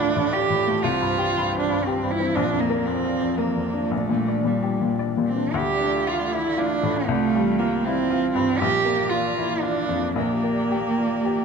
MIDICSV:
0, 0, Header, 1, 4, 480
1, 0, Start_track
1, 0, Tempo, 507185
1, 784, Time_signature, 3, 2, 24, 8
1, 2709, Tempo, 534759
1, 5589, Tempo, 507614
1, 8949, Tempo, 535714
1, 10583, End_track
2, 0, Start_track
2, 0, Title_t, "Analog synth pad"
2, 0, Program_c, 0, 89
2, 0, Note_on_c, 0, 57, 68
2, 0, Note_on_c, 0, 65, 67
2, 0, Note_on_c, 0, 74, 69
2, 783, Note_off_c, 0, 74, 0
2, 785, Note_off_c, 0, 57, 0
2, 792, Note_on_c, 0, 72, 69
2, 793, Note_on_c, 0, 55, 70
2, 2226, Note_on_c, 0, 53, 69
2, 2228, Note_off_c, 0, 72, 0
2, 2229, Note_off_c, 0, 55, 0
2, 2229, Note_on_c, 0, 74, 72
2, 3657, Note_off_c, 0, 53, 0
2, 3657, Note_off_c, 0, 65, 0
2, 3663, Note_on_c, 0, 55, 73
2, 3668, Note_on_c, 0, 62, 68
2, 5098, Note_on_c, 0, 57, 80
2, 5105, Note_on_c, 0, 65, 75
2, 5107, Note_off_c, 0, 74, 0
2, 5116, Note_off_c, 0, 55, 0
2, 5118, Note_off_c, 0, 62, 0
2, 5118, Note_on_c, 0, 74, 80
2, 6512, Note_off_c, 0, 57, 0
2, 6523, Note_off_c, 0, 74, 0
2, 6578, Note_on_c, 0, 55, 82
2, 6581, Note_on_c, 0, 77, 77
2, 7989, Note_on_c, 0, 74, 81
2, 7991, Note_off_c, 0, 55, 0
2, 7992, Note_off_c, 0, 77, 0
2, 7999, Note_on_c, 0, 58, 79
2, 9381, Note_off_c, 0, 65, 0
2, 9449, Note_on_c, 0, 67, 75
2, 10583, Note_off_c, 0, 58, 0
2, 10583, Note_off_c, 0, 67, 0
2, 10583, Note_off_c, 0, 74, 0
2, 10583, End_track
3, 0, Start_track
3, 0, Title_t, "Cello"
3, 0, Program_c, 1, 42
3, 0, Note_on_c, 1, 62, 117
3, 311, Note_on_c, 1, 67, 123
3, 325, Note_off_c, 1, 62, 0
3, 783, Note_on_c, 1, 65, 110
3, 797, Note_off_c, 1, 67, 0
3, 1505, Note_off_c, 1, 65, 0
3, 1509, Note_on_c, 1, 62, 101
3, 1738, Note_on_c, 1, 60, 90
3, 1752, Note_off_c, 1, 62, 0
3, 1993, Note_on_c, 1, 64, 102
3, 2007, Note_off_c, 1, 60, 0
3, 2227, Note_on_c, 1, 62, 108
3, 2241, Note_off_c, 1, 64, 0
3, 2460, Note_on_c, 1, 58, 99
3, 2474, Note_off_c, 1, 62, 0
3, 2705, Note_on_c, 1, 60, 106
3, 2719, Note_off_c, 1, 58, 0
3, 3172, Note_on_c, 1, 58, 89
3, 3185, Note_off_c, 1, 60, 0
3, 3653, Note_on_c, 1, 57, 102
3, 3667, Note_off_c, 1, 58, 0
3, 4157, Note_on_c, 1, 55, 77
3, 4170, Note_off_c, 1, 57, 0
3, 4634, Note_off_c, 1, 55, 0
3, 4866, Note_on_c, 1, 60, 88
3, 5123, Note_on_c, 1, 67, 111
3, 5136, Note_off_c, 1, 60, 0
3, 5586, Note_on_c, 1, 65, 93
3, 5600, Note_off_c, 1, 67, 0
3, 5849, Note_on_c, 1, 64, 104
3, 5863, Note_off_c, 1, 65, 0
3, 6083, Note_on_c, 1, 62, 115
3, 6097, Note_off_c, 1, 64, 0
3, 6552, Note_on_c, 1, 57, 126
3, 6566, Note_off_c, 1, 62, 0
3, 7020, Note_on_c, 1, 58, 103
3, 7034, Note_off_c, 1, 57, 0
3, 7269, Note_on_c, 1, 60, 117
3, 7284, Note_off_c, 1, 58, 0
3, 7721, Note_off_c, 1, 60, 0
3, 7727, Note_on_c, 1, 60, 110
3, 7975, Note_on_c, 1, 67, 126
3, 7989, Note_off_c, 1, 60, 0
3, 8450, Note_on_c, 1, 65, 105
3, 8464, Note_off_c, 1, 67, 0
3, 8943, Note_on_c, 1, 62, 109
3, 8957, Note_off_c, 1, 65, 0
3, 9418, Note_off_c, 1, 62, 0
3, 9431, Note_on_c, 1, 58, 112
3, 10583, Note_off_c, 1, 58, 0
3, 10583, End_track
4, 0, Start_track
4, 0, Title_t, "Upright piano"
4, 0, Program_c, 2, 0
4, 0, Control_c, 2, 64, 127
4, 0, Note_on_c, 2, 38, 70
4, 0, Note_on_c, 2, 45, 62
4, 0, Note_on_c, 2, 65, 57
4, 0, Note_on_c, 2, 74, 61
4, 154, Note_off_c, 2, 45, 0
4, 154, Note_on_c, 2, 45, 60
4, 245, Note_off_c, 2, 65, 0
4, 308, Note_off_c, 2, 74, 0
4, 308, Note_on_c, 2, 74, 67
4, 404, Note_off_c, 2, 45, 0
4, 475, Note_on_c, 2, 45, 57
4, 561, Note_off_c, 2, 74, 0
4, 639, Note_on_c, 2, 57, 60
4, 725, Note_off_c, 2, 45, 0
4, 749, Note_off_c, 2, 38, 0
4, 791, Note_off_c, 2, 57, 0
4, 795, Note_on_c, 2, 36, 73
4, 802, Control_c, 2, 64, 0
4, 953, Note_on_c, 2, 43, 63
4, 981, Control_c, 2, 64, 127
4, 1117, Note_on_c, 2, 67, 68
4, 1205, Note_off_c, 2, 43, 0
4, 1299, Note_on_c, 2, 43, 62
4, 1367, Note_off_c, 2, 67, 0
4, 1437, Note_on_c, 2, 65, 63
4, 1539, Note_off_c, 2, 43, 0
4, 1608, Note_on_c, 2, 43, 59
4, 1688, Note_off_c, 2, 65, 0
4, 1767, Note_on_c, 2, 67, 64
4, 1853, Note_off_c, 2, 43, 0
4, 1918, Note_on_c, 2, 43, 55
4, 2011, Note_off_c, 2, 67, 0
4, 2080, Note_on_c, 2, 60, 61
4, 2166, Note_off_c, 2, 43, 0
4, 2191, Note_off_c, 2, 36, 0
4, 2232, Note_off_c, 2, 60, 0
4, 2238, Note_on_c, 2, 34, 74
4, 2242, Control_c, 2, 64, 0
4, 2394, Note_on_c, 2, 41, 59
4, 2410, Control_c, 2, 64, 127
4, 2552, Note_on_c, 2, 70, 61
4, 2647, Note_off_c, 2, 41, 0
4, 2719, Note_on_c, 2, 41, 59
4, 2804, Note_off_c, 2, 70, 0
4, 2871, Note_on_c, 2, 65, 55
4, 2963, Note_off_c, 2, 41, 0
4, 3025, Note_on_c, 2, 41, 52
4, 3118, Note_off_c, 2, 65, 0
4, 3172, Note_on_c, 2, 70, 57
4, 3275, Note_off_c, 2, 41, 0
4, 3335, Note_on_c, 2, 41, 50
4, 3428, Note_off_c, 2, 70, 0
4, 3492, Note_on_c, 2, 62, 51
4, 3590, Note_off_c, 2, 41, 0
4, 3626, Note_off_c, 2, 34, 0
4, 3651, Note_on_c, 2, 34, 65
4, 3654, Note_off_c, 2, 62, 0
4, 3674, Control_c, 2, 64, 0
4, 3812, Note_on_c, 2, 46, 53
4, 3814, Control_c, 2, 64, 127
4, 3983, Note_on_c, 2, 74, 55
4, 4075, Note_off_c, 2, 46, 0
4, 4128, Note_on_c, 2, 46, 49
4, 4241, Note_off_c, 2, 74, 0
4, 4290, Note_on_c, 2, 67, 49
4, 4394, Note_off_c, 2, 46, 0
4, 4456, Note_on_c, 2, 46, 48
4, 4555, Note_off_c, 2, 67, 0
4, 4620, Note_on_c, 2, 74, 53
4, 4719, Note_off_c, 2, 46, 0
4, 4783, Note_on_c, 2, 46, 47
4, 4884, Note_off_c, 2, 74, 0
4, 4953, Note_on_c, 2, 62, 51
4, 5046, Note_off_c, 2, 46, 0
4, 5074, Note_off_c, 2, 34, 0
4, 5110, Note_on_c, 2, 38, 74
4, 5113, Note_off_c, 2, 62, 0
4, 5129, Control_c, 2, 64, 0
4, 5268, Control_c, 2, 64, 127
4, 5354, Note_on_c, 2, 62, 61
4, 5580, Note_on_c, 2, 65, 62
4, 5737, Note_off_c, 2, 62, 0
4, 5825, Note_on_c, 2, 64, 56
4, 5978, Note_off_c, 2, 65, 0
4, 6061, Note_on_c, 2, 65, 69
4, 6074, Note_off_c, 2, 64, 0
4, 6308, Note_on_c, 2, 45, 66
4, 6453, Note_off_c, 2, 65, 0
4, 6519, Note_off_c, 2, 38, 0
4, 6547, Note_on_c, 2, 36, 86
4, 6552, Note_off_c, 2, 45, 0
4, 6574, Control_c, 2, 64, 0
4, 6709, Control_c, 2, 64, 127
4, 6798, Note_on_c, 2, 55, 72
4, 7032, Note_on_c, 2, 65, 73
4, 7178, Note_off_c, 2, 55, 0
4, 7283, Note_on_c, 2, 64, 66
4, 7412, Note_off_c, 2, 65, 0
4, 7513, Note_on_c, 2, 65, 75
4, 7514, Note_off_c, 2, 64, 0
4, 7745, Note_on_c, 2, 43, 68
4, 7888, Note_off_c, 2, 65, 0
4, 7937, Note_off_c, 2, 36, 0
4, 7981, Note_off_c, 2, 43, 0
4, 7995, Note_on_c, 2, 34, 85
4, 7998, Control_c, 2, 64, 0
4, 8145, Control_c, 2, 64, 127
4, 8219, Note_on_c, 2, 58, 69
4, 8461, Note_on_c, 2, 65, 68
4, 8606, Note_off_c, 2, 58, 0
4, 8713, Note_on_c, 2, 64, 55
4, 8850, Note_off_c, 2, 65, 0
4, 8950, Note_on_c, 2, 65, 63
4, 8953, Note_off_c, 2, 64, 0
4, 9184, Note_on_c, 2, 41, 55
4, 9325, Note_off_c, 2, 65, 0
4, 9392, Note_off_c, 2, 34, 0
4, 9422, Note_off_c, 2, 41, 0
4, 9426, Note_on_c, 2, 34, 71
4, 9440, Control_c, 2, 64, 0
4, 9586, Control_c, 2, 64, 127
4, 9675, Note_on_c, 2, 58, 51
4, 9919, Note_on_c, 2, 67, 60
4, 10058, Note_off_c, 2, 58, 0
4, 10162, Note_on_c, 2, 65, 46
4, 10299, Note_off_c, 2, 67, 0
4, 10395, Note_off_c, 2, 65, 0
4, 10405, Note_on_c, 2, 67, 60
4, 10583, Note_off_c, 2, 34, 0
4, 10583, Note_off_c, 2, 67, 0
4, 10583, End_track
0, 0, End_of_file